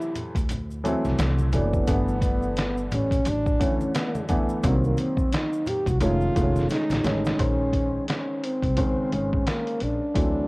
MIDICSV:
0, 0, Header, 1, 5, 480
1, 0, Start_track
1, 0, Tempo, 689655
1, 1306, Time_signature, 4, 2, 24, 8
1, 7291, End_track
2, 0, Start_track
2, 0, Title_t, "French horn"
2, 0, Program_c, 0, 60
2, 0, Note_on_c, 0, 64, 84
2, 111, Note_off_c, 0, 64, 0
2, 1083, Note_on_c, 0, 59, 102
2, 2006, Note_off_c, 0, 59, 0
2, 2050, Note_on_c, 0, 61, 106
2, 2288, Note_on_c, 0, 62, 114
2, 2299, Note_off_c, 0, 61, 0
2, 2521, Note_on_c, 0, 61, 101
2, 2531, Note_off_c, 0, 62, 0
2, 2746, Note_off_c, 0, 61, 0
2, 2751, Note_on_c, 0, 59, 84
2, 2971, Note_off_c, 0, 59, 0
2, 3235, Note_on_c, 0, 60, 94
2, 3381, Note_on_c, 0, 58, 85
2, 3391, Note_off_c, 0, 60, 0
2, 3476, Note_on_c, 0, 60, 91
2, 3486, Note_off_c, 0, 58, 0
2, 3713, Note_on_c, 0, 63, 92
2, 3724, Note_off_c, 0, 60, 0
2, 3952, Note_on_c, 0, 67, 103
2, 3963, Note_off_c, 0, 63, 0
2, 4095, Note_on_c, 0, 66, 98
2, 4105, Note_off_c, 0, 67, 0
2, 4183, Note_off_c, 0, 66, 0
2, 4187, Note_on_c, 0, 65, 115
2, 4638, Note_off_c, 0, 65, 0
2, 4670, Note_on_c, 0, 63, 112
2, 4891, Note_off_c, 0, 63, 0
2, 4911, Note_on_c, 0, 63, 105
2, 5152, Note_on_c, 0, 61, 104
2, 5162, Note_off_c, 0, 63, 0
2, 5625, Note_off_c, 0, 61, 0
2, 5630, Note_on_c, 0, 61, 86
2, 5878, Note_on_c, 0, 60, 102
2, 5888, Note_off_c, 0, 61, 0
2, 6352, Note_on_c, 0, 61, 93
2, 6362, Note_off_c, 0, 60, 0
2, 6594, Note_on_c, 0, 58, 93
2, 6604, Note_off_c, 0, 61, 0
2, 6838, Note_on_c, 0, 62, 99
2, 6849, Note_off_c, 0, 58, 0
2, 7291, Note_off_c, 0, 62, 0
2, 7291, End_track
3, 0, Start_track
3, 0, Title_t, "Upright piano"
3, 0, Program_c, 1, 0
3, 0, Note_on_c, 1, 48, 83
3, 0, Note_on_c, 1, 52, 77
3, 0, Note_on_c, 1, 54, 72
3, 0, Note_on_c, 1, 57, 64
3, 244, Note_off_c, 1, 52, 0
3, 246, Note_off_c, 1, 54, 0
3, 248, Note_off_c, 1, 57, 0
3, 249, Note_off_c, 1, 48, 0
3, 583, Note_on_c, 1, 52, 81
3, 585, Note_on_c, 1, 54, 78
3, 590, Note_on_c, 1, 57, 85
3, 594, Note_on_c, 1, 60, 94
3, 1015, Note_off_c, 1, 52, 0
3, 1016, Note_off_c, 1, 54, 0
3, 1019, Note_off_c, 1, 57, 0
3, 1021, Note_off_c, 1, 60, 0
3, 1065, Note_on_c, 1, 52, 73
3, 1070, Note_on_c, 1, 54, 61
3, 1072, Note_on_c, 1, 57, 66
3, 1075, Note_on_c, 1, 62, 73
3, 1281, Note_off_c, 1, 52, 0
3, 1283, Note_off_c, 1, 54, 0
3, 1284, Note_off_c, 1, 57, 0
3, 1286, Note_off_c, 1, 62, 0
3, 1302, Note_on_c, 1, 50, 81
3, 1305, Note_on_c, 1, 52, 67
3, 1309, Note_on_c, 1, 57, 69
3, 1311, Note_on_c, 1, 59, 90
3, 2166, Note_off_c, 1, 50, 0
3, 2167, Note_off_c, 1, 52, 0
3, 2169, Note_off_c, 1, 57, 0
3, 2170, Note_off_c, 1, 59, 0
3, 2502, Note_on_c, 1, 50, 76
3, 2506, Note_on_c, 1, 52, 73
3, 2508, Note_on_c, 1, 57, 67
3, 2513, Note_on_c, 1, 61, 78
3, 2935, Note_off_c, 1, 50, 0
3, 2936, Note_off_c, 1, 52, 0
3, 2938, Note_off_c, 1, 57, 0
3, 2940, Note_off_c, 1, 61, 0
3, 2982, Note_on_c, 1, 50, 69
3, 2988, Note_on_c, 1, 52, 72
3, 2989, Note_on_c, 1, 57, 73
3, 2993, Note_on_c, 1, 59, 78
3, 3199, Note_off_c, 1, 50, 0
3, 3202, Note_off_c, 1, 52, 0
3, 3203, Note_off_c, 1, 57, 0
3, 3204, Note_off_c, 1, 59, 0
3, 3224, Note_on_c, 1, 50, 64
3, 3227, Note_on_c, 1, 54, 68
3, 3232, Note_on_c, 1, 58, 71
3, 3233, Note_on_c, 1, 60, 80
3, 3271, Note_on_c, 1, 51, 73
3, 3278, Note_off_c, 1, 50, 0
3, 4088, Note_off_c, 1, 54, 0
3, 4090, Note_off_c, 1, 58, 0
3, 4091, Note_off_c, 1, 60, 0
3, 4110, Note_off_c, 1, 51, 0
3, 4179, Note_on_c, 1, 51, 77
3, 4182, Note_on_c, 1, 56, 68
3, 4187, Note_on_c, 1, 57, 75
3, 4189, Note_on_c, 1, 61, 93
3, 4398, Note_off_c, 1, 51, 0
3, 4399, Note_off_c, 1, 56, 0
3, 4402, Note_off_c, 1, 57, 0
3, 4403, Note_off_c, 1, 61, 0
3, 4420, Note_on_c, 1, 51, 76
3, 4425, Note_on_c, 1, 56, 67
3, 4426, Note_on_c, 1, 57, 72
3, 4431, Note_on_c, 1, 59, 70
3, 4476, Note_on_c, 1, 61, 83
3, 4481, Note_off_c, 1, 59, 0
3, 4853, Note_off_c, 1, 51, 0
3, 4856, Note_off_c, 1, 56, 0
3, 4856, Note_off_c, 1, 57, 0
3, 4881, Note_off_c, 1, 61, 0
3, 4897, Note_on_c, 1, 51, 72
3, 4901, Note_on_c, 1, 56, 72
3, 4905, Note_on_c, 1, 57, 63
3, 4909, Note_on_c, 1, 61, 86
3, 5116, Note_off_c, 1, 51, 0
3, 5119, Note_off_c, 1, 56, 0
3, 5120, Note_off_c, 1, 57, 0
3, 5122, Note_off_c, 1, 61, 0
3, 5141, Note_on_c, 1, 51, 72
3, 5144, Note_on_c, 1, 56, 65
3, 5147, Note_on_c, 1, 72, 65
3, 5151, Note_on_c, 1, 61, 74
3, 6005, Note_off_c, 1, 51, 0
3, 6007, Note_off_c, 1, 56, 0
3, 6008, Note_off_c, 1, 72, 0
3, 6010, Note_off_c, 1, 61, 0
3, 6102, Note_on_c, 1, 51, 65
3, 6105, Note_on_c, 1, 56, 65
3, 6109, Note_on_c, 1, 72, 65
3, 6111, Note_on_c, 1, 49, 76
3, 6966, Note_off_c, 1, 51, 0
3, 6967, Note_off_c, 1, 56, 0
3, 6969, Note_off_c, 1, 72, 0
3, 6970, Note_off_c, 1, 49, 0
3, 7060, Note_on_c, 1, 52, 66
3, 7064, Note_on_c, 1, 54, 64
3, 7068, Note_on_c, 1, 57, 64
3, 7069, Note_on_c, 1, 60, 73
3, 7291, Note_off_c, 1, 52, 0
3, 7291, Note_off_c, 1, 54, 0
3, 7291, Note_off_c, 1, 57, 0
3, 7291, Note_off_c, 1, 60, 0
3, 7291, End_track
4, 0, Start_track
4, 0, Title_t, "Upright bass"
4, 0, Program_c, 2, 32
4, 247, Note_on_c, 2, 38, 90
4, 644, Note_off_c, 2, 38, 0
4, 731, Note_on_c, 2, 36, 85
4, 811, Note_off_c, 2, 36, 0
4, 827, Note_on_c, 2, 36, 108
4, 1071, Note_on_c, 2, 30, 83
4, 1082, Note_off_c, 2, 36, 0
4, 1267, Note_off_c, 2, 30, 0
4, 1309, Note_on_c, 2, 31, 98
4, 1999, Note_off_c, 2, 31, 0
4, 2031, Note_on_c, 2, 33, 97
4, 2227, Note_off_c, 2, 33, 0
4, 2268, Note_on_c, 2, 33, 91
4, 2466, Note_off_c, 2, 33, 0
4, 3227, Note_on_c, 2, 36, 109
4, 3425, Note_off_c, 2, 36, 0
4, 4083, Note_on_c, 2, 36, 92
4, 4166, Note_off_c, 2, 36, 0
4, 4182, Note_on_c, 2, 29, 104
4, 4382, Note_off_c, 2, 29, 0
4, 4428, Note_on_c, 2, 29, 98
4, 4625, Note_off_c, 2, 29, 0
4, 4802, Note_on_c, 2, 33, 90
4, 4886, Note_off_c, 2, 33, 0
4, 4901, Note_on_c, 2, 33, 89
4, 5101, Note_off_c, 2, 33, 0
4, 5147, Note_on_c, 2, 34, 92
4, 5543, Note_off_c, 2, 34, 0
4, 6004, Note_on_c, 2, 36, 83
4, 6087, Note_off_c, 2, 36, 0
4, 6352, Note_on_c, 2, 32, 89
4, 6548, Note_off_c, 2, 32, 0
4, 6830, Note_on_c, 2, 34, 80
4, 6945, Note_off_c, 2, 34, 0
4, 7068, Note_on_c, 2, 38, 103
4, 7265, Note_off_c, 2, 38, 0
4, 7291, End_track
5, 0, Start_track
5, 0, Title_t, "Drums"
5, 11, Note_on_c, 9, 82, 42
5, 80, Note_off_c, 9, 82, 0
5, 108, Note_on_c, 9, 42, 75
5, 108, Note_on_c, 9, 64, 64
5, 108, Note_on_c, 9, 82, 46
5, 177, Note_off_c, 9, 64, 0
5, 177, Note_off_c, 9, 82, 0
5, 178, Note_off_c, 9, 42, 0
5, 244, Note_on_c, 9, 36, 82
5, 248, Note_on_c, 9, 42, 46
5, 254, Note_on_c, 9, 82, 54
5, 313, Note_off_c, 9, 36, 0
5, 318, Note_off_c, 9, 42, 0
5, 324, Note_off_c, 9, 82, 0
5, 342, Note_on_c, 9, 42, 90
5, 352, Note_on_c, 9, 63, 45
5, 352, Note_on_c, 9, 64, 64
5, 352, Note_on_c, 9, 82, 64
5, 411, Note_off_c, 9, 42, 0
5, 422, Note_off_c, 9, 63, 0
5, 422, Note_off_c, 9, 64, 0
5, 422, Note_off_c, 9, 82, 0
5, 493, Note_on_c, 9, 82, 41
5, 563, Note_off_c, 9, 82, 0
5, 591, Note_on_c, 9, 42, 73
5, 595, Note_on_c, 9, 82, 50
5, 661, Note_off_c, 9, 42, 0
5, 665, Note_off_c, 9, 82, 0
5, 729, Note_on_c, 9, 63, 69
5, 729, Note_on_c, 9, 82, 50
5, 745, Note_on_c, 9, 38, 35
5, 799, Note_off_c, 9, 63, 0
5, 799, Note_off_c, 9, 82, 0
5, 814, Note_off_c, 9, 38, 0
5, 826, Note_on_c, 9, 42, 91
5, 826, Note_on_c, 9, 82, 67
5, 832, Note_on_c, 9, 38, 124
5, 895, Note_off_c, 9, 42, 0
5, 896, Note_off_c, 9, 82, 0
5, 901, Note_off_c, 9, 38, 0
5, 965, Note_on_c, 9, 63, 68
5, 965, Note_on_c, 9, 82, 52
5, 1035, Note_off_c, 9, 63, 0
5, 1035, Note_off_c, 9, 82, 0
5, 1062, Note_on_c, 9, 64, 69
5, 1062, Note_on_c, 9, 82, 50
5, 1063, Note_on_c, 9, 42, 66
5, 1131, Note_off_c, 9, 64, 0
5, 1131, Note_off_c, 9, 82, 0
5, 1133, Note_off_c, 9, 42, 0
5, 1207, Note_on_c, 9, 36, 94
5, 1208, Note_on_c, 9, 82, 51
5, 1276, Note_off_c, 9, 36, 0
5, 1277, Note_off_c, 9, 82, 0
5, 1303, Note_on_c, 9, 82, 72
5, 1305, Note_on_c, 9, 42, 95
5, 1307, Note_on_c, 9, 36, 106
5, 1373, Note_off_c, 9, 82, 0
5, 1374, Note_off_c, 9, 42, 0
5, 1377, Note_off_c, 9, 36, 0
5, 1451, Note_on_c, 9, 82, 47
5, 1520, Note_off_c, 9, 82, 0
5, 1542, Note_on_c, 9, 36, 101
5, 1545, Note_on_c, 9, 42, 71
5, 1546, Note_on_c, 9, 63, 46
5, 1546, Note_on_c, 9, 82, 47
5, 1611, Note_off_c, 9, 36, 0
5, 1614, Note_off_c, 9, 42, 0
5, 1616, Note_off_c, 9, 63, 0
5, 1616, Note_off_c, 9, 82, 0
5, 1687, Note_on_c, 9, 82, 41
5, 1757, Note_off_c, 9, 82, 0
5, 1786, Note_on_c, 9, 82, 57
5, 1788, Note_on_c, 9, 42, 79
5, 1800, Note_on_c, 9, 38, 114
5, 1855, Note_off_c, 9, 82, 0
5, 1857, Note_off_c, 9, 42, 0
5, 1869, Note_off_c, 9, 38, 0
5, 1931, Note_on_c, 9, 82, 39
5, 2000, Note_off_c, 9, 82, 0
5, 2029, Note_on_c, 9, 64, 70
5, 2029, Note_on_c, 9, 82, 48
5, 2032, Note_on_c, 9, 42, 72
5, 2099, Note_off_c, 9, 64, 0
5, 2099, Note_off_c, 9, 82, 0
5, 2102, Note_off_c, 9, 42, 0
5, 2165, Note_on_c, 9, 36, 93
5, 2172, Note_on_c, 9, 42, 49
5, 2173, Note_on_c, 9, 82, 57
5, 2235, Note_off_c, 9, 36, 0
5, 2241, Note_off_c, 9, 42, 0
5, 2243, Note_off_c, 9, 82, 0
5, 2263, Note_on_c, 9, 42, 93
5, 2269, Note_on_c, 9, 63, 47
5, 2269, Note_on_c, 9, 64, 64
5, 2269, Note_on_c, 9, 82, 63
5, 2333, Note_off_c, 9, 42, 0
5, 2339, Note_off_c, 9, 63, 0
5, 2339, Note_off_c, 9, 64, 0
5, 2339, Note_off_c, 9, 82, 0
5, 2410, Note_on_c, 9, 36, 100
5, 2412, Note_on_c, 9, 82, 39
5, 2479, Note_off_c, 9, 36, 0
5, 2482, Note_off_c, 9, 82, 0
5, 2511, Note_on_c, 9, 36, 97
5, 2511, Note_on_c, 9, 42, 73
5, 2515, Note_on_c, 9, 82, 49
5, 2580, Note_off_c, 9, 36, 0
5, 2580, Note_off_c, 9, 42, 0
5, 2585, Note_off_c, 9, 82, 0
5, 2651, Note_on_c, 9, 63, 66
5, 2651, Note_on_c, 9, 82, 50
5, 2720, Note_off_c, 9, 63, 0
5, 2720, Note_off_c, 9, 82, 0
5, 2747, Note_on_c, 9, 42, 94
5, 2747, Note_on_c, 9, 82, 68
5, 2753, Note_on_c, 9, 38, 127
5, 2816, Note_off_c, 9, 82, 0
5, 2817, Note_off_c, 9, 42, 0
5, 2823, Note_off_c, 9, 38, 0
5, 2887, Note_on_c, 9, 63, 74
5, 2887, Note_on_c, 9, 82, 47
5, 2957, Note_off_c, 9, 63, 0
5, 2957, Note_off_c, 9, 82, 0
5, 2984, Note_on_c, 9, 42, 70
5, 2984, Note_on_c, 9, 64, 73
5, 2984, Note_on_c, 9, 82, 53
5, 2990, Note_on_c, 9, 36, 101
5, 3053, Note_off_c, 9, 42, 0
5, 3054, Note_off_c, 9, 64, 0
5, 3054, Note_off_c, 9, 82, 0
5, 3060, Note_off_c, 9, 36, 0
5, 3125, Note_on_c, 9, 82, 49
5, 3195, Note_off_c, 9, 82, 0
5, 3224, Note_on_c, 9, 82, 72
5, 3226, Note_on_c, 9, 36, 108
5, 3228, Note_on_c, 9, 42, 99
5, 3293, Note_off_c, 9, 82, 0
5, 3296, Note_off_c, 9, 36, 0
5, 3298, Note_off_c, 9, 42, 0
5, 3371, Note_on_c, 9, 82, 45
5, 3440, Note_off_c, 9, 82, 0
5, 3461, Note_on_c, 9, 63, 49
5, 3461, Note_on_c, 9, 82, 46
5, 3466, Note_on_c, 9, 42, 80
5, 3531, Note_off_c, 9, 63, 0
5, 3531, Note_off_c, 9, 82, 0
5, 3535, Note_off_c, 9, 42, 0
5, 3598, Note_on_c, 9, 36, 106
5, 3605, Note_on_c, 9, 82, 40
5, 3668, Note_off_c, 9, 36, 0
5, 3675, Note_off_c, 9, 82, 0
5, 3705, Note_on_c, 9, 82, 60
5, 3706, Note_on_c, 9, 42, 84
5, 3718, Note_on_c, 9, 38, 113
5, 3775, Note_off_c, 9, 82, 0
5, 3776, Note_off_c, 9, 42, 0
5, 3788, Note_off_c, 9, 38, 0
5, 3848, Note_on_c, 9, 82, 43
5, 3917, Note_off_c, 9, 82, 0
5, 3942, Note_on_c, 9, 64, 68
5, 3942, Note_on_c, 9, 82, 47
5, 3949, Note_on_c, 9, 42, 72
5, 4011, Note_off_c, 9, 64, 0
5, 4011, Note_off_c, 9, 82, 0
5, 4018, Note_off_c, 9, 42, 0
5, 4081, Note_on_c, 9, 36, 95
5, 4086, Note_on_c, 9, 42, 49
5, 4089, Note_on_c, 9, 82, 54
5, 4150, Note_off_c, 9, 36, 0
5, 4156, Note_off_c, 9, 42, 0
5, 4158, Note_off_c, 9, 82, 0
5, 4179, Note_on_c, 9, 42, 88
5, 4185, Note_on_c, 9, 63, 48
5, 4185, Note_on_c, 9, 64, 65
5, 4185, Note_on_c, 9, 82, 66
5, 4249, Note_off_c, 9, 42, 0
5, 4255, Note_off_c, 9, 63, 0
5, 4255, Note_off_c, 9, 64, 0
5, 4255, Note_off_c, 9, 82, 0
5, 4321, Note_on_c, 9, 82, 38
5, 4391, Note_off_c, 9, 82, 0
5, 4427, Note_on_c, 9, 36, 97
5, 4427, Note_on_c, 9, 42, 78
5, 4430, Note_on_c, 9, 82, 50
5, 4497, Note_off_c, 9, 36, 0
5, 4497, Note_off_c, 9, 42, 0
5, 4499, Note_off_c, 9, 82, 0
5, 4565, Note_on_c, 9, 63, 74
5, 4565, Note_on_c, 9, 82, 54
5, 4585, Note_on_c, 9, 38, 38
5, 4635, Note_off_c, 9, 63, 0
5, 4635, Note_off_c, 9, 82, 0
5, 4655, Note_off_c, 9, 38, 0
5, 4660, Note_on_c, 9, 82, 69
5, 4667, Note_on_c, 9, 42, 88
5, 4677, Note_on_c, 9, 38, 64
5, 4730, Note_off_c, 9, 82, 0
5, 4737, Note_off_c, 9, 42, 0
5, 4747, Note_off_c, 9, 38, 0
5, 4802, Note_on_c, 9, 63, 76
5, 4802, Note_on_c, 9, 82, 52
5, 4809, Note_on_c, 9, 42, 57
5, 4820, Note_on_c, 9, 38, 66
5, 4872, Note_off_c, 9, 63, 0
5, 4872, Note_off_c, 9, 82, 0
5, 4879, Note_off_c, 9, 42, 0
5, 4889, Note_off_c, 9, 38, 0
5, 4900, Note_on_c, 9, 64, 68
5, 4900, Note_on_c, 9, 82, 53
5, 4903, Note_on_c, 9, 42, 70
5, 4918, Note_on_c, 9, 38, 93
5, 4970, Note_off_c, 9, 64, 0
5, 4970, Note_off_c, 9, 82, 0
5, 4973, Note_off_c, 9, 42, 0
5, 4987, Note_off_c, 9, 38, 0
5, 5046, Note_on_c, 9, 82, 48
5, 5058, Note_on_c, 9, 38, 98
5, 5115, Note_off_c, 9, 82, 0
5, 5128, Note_off_c, 9, 38, 0
5, 5145, Note_on_c, 9, 36, 98
5, 5145, Note_on_c, 9, 42, 96
5, 5215, Note_off_c, 9, 36, 0
5, 5215, Note_off_c, 9, 42, 0
5, 5379, Note_on_c, 9, 36, 85
5, 5383, Note_on_c, 9, 42, 70
5, 5449, Note_off_c, 9, 36, 0
5, 5452, Note_off_c, 9, 42, 0
5, 5625, Note_on_c, 9, 42, 80
5, 5636, Note_on_c, 9, 38, 105
5, 5694, Note_off_c, 9, 42, 0
5, 5706, Note_off_c, 9, 38, 0
5, 5872, Note_on_c, 9, 42, 73
5, 5941, Note_off_c, 9, 42, 0
5, 6003, Note_on_c, 9, 36, 85
5, 6010, Note_on_c, 9, 42, 44
5, 6073, Note_off_c, 9, 36, 0
5, 6080, Note_off_c, 9, 42, 0
5, 6103, Note_on_c, 9, 42, 81
5, 6110, Note_on_c, 9, 36, 94
5, 6172, Note_off_c, 9, 42, 0
5, 6179, Note_off_c, 9, 36, 0
5, 6350, Note_on_c, 9, 42, 70
5, 6420, Note_off_c, 9, 42, 0
5, 6494, Note_on_c, 9, 36, 90
5, 6563, Note_off_c, 9, 36, 0
5, 6589, Note_on_c, 9, 42, 93
5, 6595, Note_on_c, 9, 38, 120
5, 6658, Note_off_c, 9, 42, 0
5, 6664, Note_off_c, 9, 38, 0
5, 6730, Note_on_c, 9, 42, 52
5, 6800, Note_off_c, 9, 42, 0
5, 6823, Note_on_c, 9, 42, 62
5, 6893, Note_off_c, 9, 42, 0
5, 7066, Note_on_c, 9, 36, 103
5, 7067, Note_on_c, 9, 42, 100
5, 7136, Note_off_c, 9, 36, 0
5, 7137, Note_off_c, 9, 42, 0
5, 7291, End_track
0, 0, End_of_file